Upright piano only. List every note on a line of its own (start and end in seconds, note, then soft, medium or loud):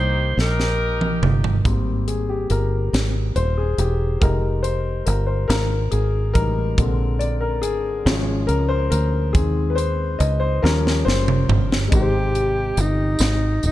0.00 0.33 D#3 medium
0.00 1.60 G3 medium
0.00 1.61 A#3 medium
0.00 1.62 D#4 medium
0.00 1.63 A#4 medium
1.64 2.22 G3 soft
1.64 2.22 A#3 soft
1.64 2.22 C4 medium
2.08 2.30 G#4 medium
2.29 2.52 G4 medium
2.50 3.39 A#4 medium
3.36 3.41 C5 medium
3.57 3.80 G#4 medium
3.79 4.20 G4 medium
4.21 6.34 G#3 soft
4.21 6.34 D#4 soft
4.21 6.74 G4 medium
4.21 4.65 A#4 medium
4.63 5.03 C5 medium
5.06 5.29 A#4 medium
5.27 5.32 C5 medium
5.48 5.58 A#4 medium
5.91 6.36 G#4 medium
6.34 6.74 G3 medium
6.34 6.74 G#3 soft
6.34 6.74 D#4 medium
6.34 7.23 A#4 loud
6.78 8.02 D3 medium
6.78 8.03 G#3 medium
6.78 8.03 C4 medium
7.19 7.42 D5 medium
7.41 7.64 A#4 medium
7.62 8.51 G#4 medium
8.05 9.30 F3 medium
8.05 9.31 G#3 medium
8.05 9.31 C#4 medium
8.47 8.52 A#4 loud
8.69 8.90 C5 loud
8.90 9.31 A#4 medium
9.33 10.58 D#3 medium
9.33 10.59 G#3 medium
9.33 10.59 C4 medium
9.33 9.71 G#4 medium
9.70 9.77 B4 medium
9.76 10.21 C5 loud
10.19 10.42 D#5 medium
10.40 10.45 C5 medium
10.62 11.87 F3 medium
10.62 11.88 G3 medium
10.62 11.88 C#4 medium
10.62 11.07 A#4 loud
11.05 11.87 C5 loud
11.88 13.16 C3 medium
11.88 13.72 G#3 medium
11.88 13.72 D#4 medium
11.93 13.72 G4 medium
11.93 12.00 A#4 medium
12.01 13.72 C5 medium